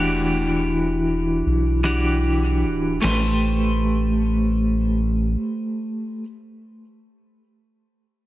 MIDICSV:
0, 0, Header, 1, 4, 480
1, 0, Start_track
1, 0, Tempo, 500000
1, 7934, End_track
2, 0, Start_track
2, 0, Title_t, "Clean electric guitar"
2, 0, Program_c, 0, 27
2, 0, Note_on_c, 0, 52, 85
2, 0, Note_on_c, 0, 62, 73
2, 0, Note_on_c, 0, 66, 70
2, 0, Note_on_c, 0, 67, 92
2, 1725, Note_off_c, 0, 52, 0
2, 1729, Note_off_c, 0, 62, 0
2, 1733, Note_off_c, 0, 66, 0
2, 1737, Note_off_c, 0, 67, 0
2, 1766, Note_on_c, 0, 52, 70
2, 1772, Note_on_c, 0, 62, 65
2, 1778, Note_on_c, 0, 66, 60
2, 1784, Note_on_c, 0, 67, 77
2, 2862, Note_off_c, 0, 52, 0
2, 2865, Note_off_c, 0, 62, 0
2, 2868, Note_off_c, 0, 66, 0
2, 2871, Note_off_c, 0, 67, 0
2, 2894, Note_on_c, 0, 57, 73
2, 2904, Note_on_c, 0, 67, 65
2, 2913, Note_on_c, 0, 71, 64
2, 2926, Note_on_c, 0, 72, 79
2, 5983, Note_off_c, 0, 57, 0
2, 5993, Note_off_c, 0, 67, 0
2, 6002, Note_off_c, 0, 71, 0
2, 6015, Note_off_c, 0, 72, 0
2, 7934, End_track
3, 0, Start_track
3, 0, Title_t, "Sub bass"
3, 0, Program_c, 1, 38
3, 0, Note_on_c, 1, 28, 94
3, 1360, Note_off_c, 1, 28, 0
3, 1395, Note_on_c, 1, 35, 89
3, 2529, Note_on_c, 1, 26, 70
3, 2543, Note_off_c, 1, 35, 0
3, 2865, Note_off_c, 1, 26, 0
3, 2906, Note_on_c, 1, 33, 93
3, 5142, Note_off_c, 1, 33, 0
3, 7934, End_track
4, 0, Start_track
4, 0, Title_t, "Drums"
4, 2903, Note_on_c, 9, 46, 78
4, 2920, Note_on_c, 9, 38, 86
4, 2999, Note_off_c, 9, 46, 0
4, 3016, Note_off_c, 9, 38, 0
4, 7934, End_track
0, 0, End_of_file